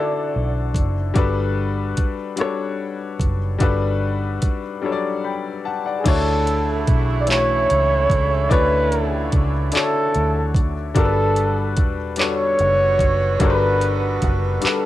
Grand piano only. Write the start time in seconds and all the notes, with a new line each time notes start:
Already playing: D3 D4 E4 F#4 A4 C5 D5
1.14 G3 D4 F#4 A4
1.18 B4
2.36 G3 D4 F#4 A4
2.40 C#5
3.58 G3 D4 F#4 A4
3.63 B4
4.82 F#3 G3 D4 A4
4.86 C#5
4.92 D5
5.24 G5 B5
5.65 F#5 A5
5.86 D5 F#5
6.04 D3 E4 F#4 D5
6.08 C#5
7.27 E3 A3 E4 F#4
7.31 C#5
7.38 C#5
8.49 D3 E4 F#4 D5
8.53 C#5
9.72 D3 E4 F#4 C#5 D5
10.95 G3 D4 F#4 A4
10.99 A#4
11.05 B4
12.17 G3 D4 F#4 A4 C#5
13.39 G3 D4 F#4 A4 A#4
13.50 B4
14.61 G3 D4 F#4 A4
14.65 B4